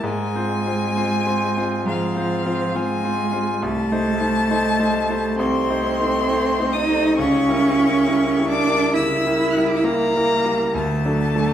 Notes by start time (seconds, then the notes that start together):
0.03 G#2 G#3 G#5
0.35 C4 F4 C5
0.66 C4 F4 C5
0.96 C4 F4 C5
1.26 C4 F4 C5
1.57 C4 F4 C5
1.86 G#2 F3 F5
2.16 C4 F4 C5
2.46 C4 F4 C5
2.75 G#3 C4 F4 C5 G#5
3.04 C4 F4 C5
3.32 C4 F4 C5
3.62 C2 A3 A5
3.92 A3 D#4 C5
4.20 A3 D#4 C5
4.50 A3 D#4 C5
4.79 A3 D#4 C5
5.09 A3 D#4 C5
5.38 C2 C4 C6
5.69 A3 D#4 C5
6.00 A3 D#4 C5
6.30 A3 D#4 C5
6.60 A3 D#4 C5
6.73 D#4 D#6
6.90 A3 D#4 C5
7.17 C#2 C#4 C#6
7.48 G3 E4 A#4
7.78 G3 E4 A#4
8.08 G3 E4 A#4
8.38 G3 E4 A#4
8.49 D4 D6
8.67 G3 E4 A#4
8.94 C#3 E4 E6
9.26 G3 E4 A#4
9.52 F#6
9.57 G3 E4 A#4 E6
9.69 D6
9.77 E6
9.84 G3 A#3 E4 A#4 A#5
10.16 G3 E4 A#4
10.45 G3 E4 A#4
10.75 D2 A3 A5
11.05 F#3 D4 A4
11.35 F#3 D4 A4